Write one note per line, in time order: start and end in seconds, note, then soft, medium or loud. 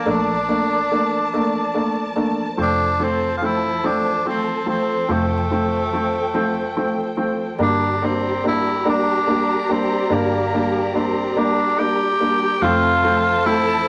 0.00 2.54 F3 medium
0.00 2.55 A#4 medium
0.00 2.55 D5 medium
0.00 5.05 A5 medium
0.06 2.54 A#1 medium
0.06 0.33 A3 medium
0.06 0.33 A#3 medium
0.06 0.33 D4 medium
0.06 2.13 D4 medium
0.48 0.75 A3 medium
0.48 0.75 A#3 soft
0.48 0.75 D4 medium
0.91 1.17 A3 medium
0.91 1.17 A#3 soft
0.91 1.17 D4 medium
1.33 1.59 A3 medium
1.33 1.59 A#3 medium
1.33 1.59 D4 medium
1.74 2.01 A3 medium
1.74 2.00 A#3 soft
1.74 2.01 D4 medium
2.16 2.42 A3 medium
2.16 2.42 A#3 soft
2.16 2.42 D4 medium
2.57 5.05 F1 medium
2.57 2.84 F3 medium
2.57 7.56 F3 medium
2.57 2.84 A3 medium
2.57 2.84 C4 medium
2.57 7.56 A4 medium
2.57 7.56 C5 medium
2.62 3.05 D4 medium
2.99 3.26 F3 medium
2.99 3.26 A3 medium
2.99 3.26 C4 medium
3.03 3.36 C4 medium
3.37 3.46 F4 medium
3.42 3.68 F3 medium
3.42 3.68 A3 soft
3.42 3.68 C4 medium
3.42 3.88 E4 medium
3.84 4.10 F3 medium
3.84 4.10 A3 medium
3.84 4.10 C4 medium
3.84 4.27 D4 medium
4.26 4.52 F3 medium
4.26 4.52 A3 medium
4.26 4.52 C4 medium
4.26 4.66 C4 medium
4.66 4.93 F3 medium
4.66 4.93 A3 soft
4.66 4.93 C4 medium
4.66 5.13 C4 medium
5.09 7.56 F1 medium
5.09 5.35 F3 medium
5.09 5.35 A3 medium
5.09 7.19 A3 medium
5.09 5.35 C4 medium
5.09 7.57 G5 medium
5.51 5.77 F3 medium
5.51 5.77 A3 medium
5.51 5.77 C4 medium
5.93 6.19 F3 medium
5.93 6.19 A3 medium
5.93 6.19 C4 medium
6.34 6.60 F3 medium
6.34 6.60 A3 medium
6.34 6.61 C4 medium
6.76 7.03 F3 medium
6.76 7.02 A3 medium
6.76 7.03 C4 medium
7.17 7.43 F3 medium
7.17 7.44 A3 medium
7.17 7.44 C4 medium
7.58 10.06 G1 medium
7.58 7.85 G3 medium
7.58 7.85 A#3 medium
7.58 7.86 D4 medium
7.58 12.56 G4 medium
7.58 12.56 A#4 medium
7.58 12.56 D5 medium
7.58 12.56 A#5 medium
7.62 8.05 D4 medium
8.02 8.28 G3 medium
8.02 8.28 A#3 medium
8.02 8.45 C4 medium
8.02 8.28 D4 medium
8.44 8.70 G3 medium
8.44 8.70 A#3 medium
8.44 8.70 D4 medium
8.44 8.84 E4 medium
8.85 9.11 G3 medium
8.85 9.11 A#3 medium
8.85 9.11 D4 medium
8.85 9.73 D4 medium
9.26 9.53 G3 medium
9.26 9.53 A#3 medium
9.26 9.53 D4 medium
9.69 9.95 G3 medium
9.69 9.95 A#3 soft
9.69 10.15 C4 medium
9.69 9.95 D4 medium
10.09 12.57 G1 medium
10.09 10.36 G3 medium
10.09 10.36 A#3 medium
10.09 10.94 A#3 medium
10.09 10.36 D4 medium
10.53 10.79 G3 medium
10.53 10.79 A#3 medium
10.53 10.79 D4 medium
10.94 11.20 G3 medium
10.94 11.20 A#3 soft
10.94 11.39 C4 medium
10.94 11.21 D4 medium
11.36 11.62 G3 medium
11.36 11.62 A#3 medium
11.36 11.62 D4 medium
11.36 11.80 D4 medium
11.78 12.04 G3 medium
11.78 12.04 A#3 medium
11.78 12.04 D4 medium
11.78 12.63 G4 medium
12.20 12.46 G3 medium
12.20 12.46 A#3 medium
12.20 12.46 D4 medium
12.60 13.88 F1 medium
12.60 13.03 F2 medium
12.60 13.03 C3 medium
12.60 13.03 F3 medium
12.60 13.88 F3 medium
12.60 12.88 F3 medium
12.60 13.03 A3 medium
12.60 12.88 A3 medium
12.60 13.03 C4 medium
12.60 12.88 C4 medium
12.60 13.47 F4 loud
12.60 13.02 F4 medium
12.60 13.88 A4 loud
12.60 13.88 A4 medium
12.60 13.88 C5 medium
12.60 13.88 A5 medium
13.03 13.29 F3 medium
13.03 13.43 F3 soft
13.03 13.29 A3 medium
13.03 13.44 A3 soft
13.03 13.29 C4 medium
13.03 13.45 C4 soft
13.03 13.45 F4 soft
13.44 13.86 F3 medium
13.44 13.71 F3 medium
13.44 13.71 A3 medium
13.44 13.86 A3 medium
13.44 13.71 C4 medium
13.44 13.85 C4 medium
13.44 13.88 E4 medium